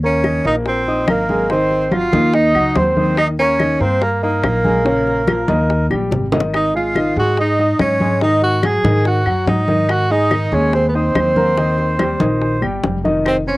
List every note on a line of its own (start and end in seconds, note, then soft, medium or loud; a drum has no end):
0.00 0.39 D#2 medium
0.00 0.21 A#3 medium
0.00 0.21 A#4 medium
0.00 0.42 C#5 medium
0.00 high conga soft
0.04 0.43 C#4 medium
0.04 0.21 A#5 medium
0.24 0.41 D#3 medium
0.24 0.42 D#4 medium
0.24 0.42 D#5 medium
0.24 high bongo medium
0.24 high conga medium
0.24 claves medium
0.45 1.04 A#1 medium
0.45 0.80 A#3 medium
0.45 0.56 D#4 medium
0.45 0.80 A#4 medium
0.45 0.55 D#5 medium
0.45 0.80 A#5 medium
0.45 high conga soft
0.66 1.06 C4 medium
0.66 1.05 C5 medium
0.66 high bongo medium
0.66 high conga soft
0.87 1.22 D#4 medium
0.87 1.22 D#5 medium
0.87 1.22 D#6 medium
0.87 high conga soft
1.07 2.07 G#1 medium
1.07 1.48 A#3 medium
1.07 1.47 A#4 medium
1.07 high bongo medium
1.07 low bongo medium
1.07 high conga medium
1.07 claves medium
1.29 1.47 G#3 medium
1.29 1.47 G#4 medium
1.29 1.47 G#5 medium
1.29 high conga medium
1.50 1.85 D#3 medium
1.50 1.95 C4 medium
1.50 1.85 D#4 medium
1.50 1.89 C5 medium
1.50 1.85 D#5 medium
1.50 high bongo medium
1.50 high conga soft
1.71 high bongo soft
1.71 high conga soft
1.92 2.09 F#3 medium
1.92 2.36 F4 loud
1.92 2.10 F#4 medium
1.92 2.34 F5 medium
1.92 2.10 F#5 medium
1.92 high bongo medium
1.92 high conga medium
1.92 claves medium
2.12 2.52 D#2 medium
2.12 2.48 D#3 medium
2.12 2.48 D#4 medium
2.12 2.48 D#5 medium
2.12 high bongo soft
2.12 high conga medium
2.34 2.78 D#4 loud
2.34 2.76 D#5 medium
2.34 high bongo medium
2.34 high conga soft
2.54 2.74 C#2 medium
2.54 2.89 F#3 medium
2.54 2.89 F#4 medium
2.54 2.90 F#5 medium
2.54 high conga soft
2.54 claves medium
2.76 3.75 D#2 medium
2.76 3.17 C4 medium
2.76 3.18 C5 medium
2.76 high bongo medium
2.76 low bongo medium
2.76 high conga medium
2.97 3.31 D#3 medium
2.97 3.31 D#4 medium
2.97 3.32 D#5 medium
2.97 high bongo soft
2.97 high conga medium
3.17 3.27 D#4 medium
3.17 3.28 D#5 medium
3.17 high bongo medium
3.17 high conga soft
3.17 claves medium
3.39 3.56 A#3 medium
3.39 3.82 C#4 medium
3.39 3.56 A#4 medium
3.39 3.79 C#5 medium
3.39 3.57 A#5 medium
3.39 high conga soft
3.59 3.77 D#3 medium
3.59 3.77 D#4 medium
3.59 3.77 D#5 medium
3.59 high bongo medium
3.59 high conga medium
3.59 claves medium
3.80 4.40 G2 medium
3.80 4.15 A#3 medium
3.80 4.04 C4 medium
3.80 4.15 A#4 medium
3.80 4.02 C5 medium
3.80 4.15 A#5 medium
3.80 high conga soft
4.02 4.22 A#3 medium
4.02 4.21 A#4 medium
4.02 high bongo medium
4.02 high conga soft
4.23 5.87 A#3 medium
4.23 4.57 D#4 medium
4.23 5.87 A#4 medium
4.23 4.57 D#5 medium
4.23 4.58 D#6 medium
4.23 high conga soft
4.43 5.42 A#1 medium
4.43 high bongo medium
4.43 low bongo medium
4.43 high conga medium
4.43 claves medium
4.64 4.82 G#3 medium
4.64 4.82 G#4 medium
4.64 4.82 G#5 medium
4.64 high conga medium
4.85 5.20 C#3 medium
4.85 5.20 C#4 medium
4.85 5.20 C#5 medium
4.85 high bongo medium
5.07 high bongo soft
5.07 high conga soft
5.27 5.45 F3 medium
5.27 5.45 F4 medium
5.27 5.45 F5 medium
5.27 high bongo medium
5.27 high conga medium
5.27 claves medium
5.48 5.88 D#2 medium
5.48 5.83 D#3 medium
5.48 5.83 D#4 medium
5.48 5.84 D#5 medium
5.48 high bongo soft
5.48 high conga loud
5.70 high bongo medium
5.70 high conga soft
5.90 6.10 A#1 medium
5.90 6.25 G3 medium
5.90 6.25 G4 medium
5.90 6.25 G5 medium
5.90 high conga medium
5.90 claves medium
6.11 7.10 G#1 medium
6.11 high bongo medium
6.11 low conga medium
6.32 6.67 D#3 medium
6.32 6.67 D#4 medium
6.32 6.68 D#5 medium
6.32 low conga medium
6.40 low bongo medium
6.54 6.74 D#4 medium
6.54 6.74 D#5 medium
6.54 high bongo medium
6.54 high conga soft
6.54 claves medium
6.75 6.92 G#3 medium
6.75 7.15 F4 medium
6.75 6.92 G#4 medium
6.75 7.14 F5 medium
6.75 6.92 G#5 medium
6.75 high conga soft
6.95 7.13 D#3 medium
6.95 7.14 D#4 medium
6.95 7.14 D#5 medium
6.95 high bongo medium
6.95 high conga medium
6.95 claves medium
7.16 7.75 G#2 loud
7.16 7.51 G#3 medium
7.16 7.38 F#4 medium
7.16 7.51 G#4 medium
7.16 7.37 F#5 medium
7.16 7.51 G#5 medium
7.16 high conga soft
7.37 7.78 D#4 medium
7.37 7.77 D#5 medium
7.37 high bongo medium
7.37 high conga soft
7.59 7.93 D#4 medium
7.59 7.94 D#5 medium
7.59 7.94 D#6 medium
7.59 high conga soft
7.79 8.78 G#2 medium
7.79 8.19 C#4 medium
7.79 8.19 C#5 medium
7.79 high bongo medium
7.79 low bongo medium
7.79 high conga medium
7.79 claves medium
8.00 8.18 G#3 medium
8.00 8.18 G#4 medium
8.00 8.18 G#5 medium
8.00 high conga medium
8.21 8.56 D#3 medium
8.21 8.56 D#4 medium
8.21 8.42 D#4 medium
8.21 8.41 D#5 medium
8.21 8.56 D#5 medium
8.21 high bongo medium
8.21 high conga soft
8.42 8.67 F#4 medium
8.42 8.62 F#5 medium
8.42 high bongo soft
8.42 high conga soft
8.63 8.81 F#3 medium
8.63 8.81 F#4 medium
8.63 9.06 G#4 loud
8.63 8.81 F#5 medium
8.63 9.06 G#5 medium
8.63 high bongo medium
8.63 high conga medium
8.63 claves medium
8.84 9.23 G#2 loud
8.84 9.19 D#3 medium
8.84 9.19 D#4 medium
8.84 9.19 D#5 medium
8.84 high bongo soft
8.84 high conga loud
9.05 9.45 F#4 medium
9.05 9.45 F#5 medium
9.05 high bongo medium
9.05 high conga soft
9.26 9.46 F#2 medium
9.26 9.61 F#3 medium
9.26 9.61 F#4 medium
9.26 9.61 F#5 medium
9.26 high conga soft
9.26 claves medium
9.46 10.46 G#2 medium
9.46 9.92 D#4 medium
9.46 9.87 D#5 medium
9.46 high bongo medium
9.46 low bongo medium
9.46 high conga medium
9.68 10.03 D#3 medium
9.68 10.03 D#4 medium
9.68 10.03 D#5 medium
9.68 high bongo soft
9.68 high conga medium
9.89 10.13 F#4 loud
9.89 10.11 F#5 medium
9.89 high bongo medium
9.89 high conga soft
9.89 claves medium
10.10 10.28 G#3 medium
10.10 10.56 D#4 loud
10.10 10.28 G#4 medium
10.10 10.53 D#5 medium
10.10 10.28 G#5 medium
10.10 high conga soft
10.31 10.49 D#3 medium
10.31 10.49 D#4 medium
10.31 10.49 D#5 medium
10.31 high bongo medium
10.31 high conga medium
10.31 claves medium
10.52 11.11 D#2 loud
10.52 10.87 G#3 medium
10.52 10.74 C#4 medium
10.52 10.87 G#4 medium
10.52 10.74 C#5 medium
10.52 10.87 G#5 medium
10.52 high conga soft
10.73 10.88 C4 medium
10.73 10.86 C5 medium
10.73 high bongo medium
10.73 high conga soft
10.88 10.97 B3 medium
10.88 10.94 B4 soft
10.94 12.64 C4 medium
10.94 11.29 D#4 medium
10.94 12.63 C5 medium
10.94 11.29 D#5 medium
10.94 11.30 D#6 medium
10.94 high conga soft
11.15 12.14 D#2 medium
11.15 high bongo medium
11.15 low bongo medium
11.15 high conga medium
11.15 claves medium
11.36 11.54 A#3 medium
11.36 11.54 A#4 medium
11.36 11.54 A#5 medium
11.36 high conga medium
11.57 11.92 D#3 medium
11.57 11.92 D#4 medium
11.57 11.93 D#5 medium
11.57 high bongo medium
11.57 high conga soft
11.78 high bongo soft
11.78 high conga soft
11.99 12.17 G3 medium
11.99 12.17 G4 medium
11.99 12.18 G5 medium
11.99 high bongo medium
11.99 high conga medium
11.99 claves medium
12.20 12.60 A#1 medium
12.20 12.55 D#3 medium
12.20 12.55 D#4 medium
12.20 12.56 D#5 medium
12.20 high bongo soft
12.20 high conga medium
12.42 high bongo medium
12.42 high conga soft
12.62 12.83 G1 medium
12.62 12.97 G3 medium
12.62 12.97 G4 medium
12.62 12.97 G5 medium
12.62 high conga soft
12.62 claves medium
12.84 13.57 F1 medium
12.84 high bongo medium
12.84 low bongo medium
12.84 high conga medium
13.04 13.39 D#3 medium
13.04 13.40 D#4 medium
13.04 13.40 D#5 medium
13.04 high bongo soft
13.04 high conga medium
13.25 13.37 C4 medium
13.25 13.35 C5 medium
13.25 high bongo medium
13.25 high conga soft
13.25 claves medium
13.47 13.57 C4 medium
13.47 13.57 C#4 medium
13.47 13.57 C5 medium
13.47 13.57 C#5 medium
13.47 13.57 C6 medium
13.47 high conga soft